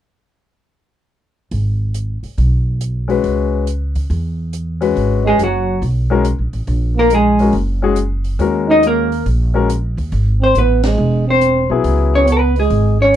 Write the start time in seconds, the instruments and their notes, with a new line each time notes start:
1.51 upright bass G#1, kick, open hi-hat
1.94 closed hi-hat
2.23 muted upright bass stroke, open hi-hat
2.38 upright bass B1, kick, open hi-hat
2.81 closed hi-hat
3.08 grand piano G#3 C#4 F#4 B4, open hi-hat
3.24 upright bass C#2, kick, open hi-hat
3.67 closed hi-hat
3.95 kick, open hi-hat
4.10 upright bass E2, kick, open hi-hat
4.53 closed hi-hat
4.81 grand piano G#3 C#4 F#4 B4, open hi-hat
4.96 upright bass G#1, kick, open hi-hat
5.25 trombone G#3, hollow-body jazz guitar G#3 G#4
5.38 upright bass F#1, trombone F#3, closed hi-hat
5.43 hollow-body jazz guitar F#3 F#4
5.82 upright bass B1, kick, open hi-hat
6.10 grand piano G#3 C#4 F#4 A#4
6.25 closed hi-hat
6.39 upright bass A#1
6.53 upright bass A1, open hi-hat
6.67 upright bass A#1, kick, open hi-hat
6.97 trombone A#3, hollow-body jazz guitar A#3 A#4
7.10 trombone G#3, closed hi-hat
7.15 hollow-body jazz guitar G#3 G#4
7.39 grand piano G#3 C#4 F#4 A#4, open hi-hat
7.53 upright bass F#1, kick, open hi-hat
7.82 grand piano G#3 C#4 F#4 G#4
7.96 closed hi-hat
8.24 open hi-hat
8.39 upright bass D#2, grand piano G#3 C#4 F#4 A#4, kick, open hi-hat
8.68 trombone D#4, hollow-body jazz guitar D#4 D#5
8.83 trombone A#3, hollow-body jazz guitar A#3, closed hi-hat
8.87 hollow-body jazz guitar A#4
9.12 open hi-hat
9.26 upright bass A#1, kick, open hi-hat
9.54 grand piano G#3 C#4 F#4 A#4
9.70 closed hi-hat
9.97 upright bass D#2, kick, open hi-hat
10.12 upright bass G#1, kick, open hi-hat
10.42 trombone C4, hollow-body jazz guitar C5
10.55 upright bass A1, trombone B3, hollow-body jazz guitar B4, closed hi-hat
10.83 trombone G#3, hollow-body jazz guitar G#4, snare, ride
10.98 upright bass E1
11.28 trombone C4, hollow-body jazz guitar C5
11.41 closed hi-hat
11.70 upright bass B1, grand piano F#3 B3 E4 G#4
11.84 upright bass C#2, kick, open hi-hat
12.15 trombone C#4, hollow-body jazz guitar C#5
12.27 trombone B3, closed hi-hat
12.32 hollow-body jazz guitar B4
12.56 trombone G#3, hollow-body jazz guitar G#4, open hi-hat
12.70 upright bass G#1, kick, open hi-hat
13.01 trombone C#4, hollow-body jazz guitar C#5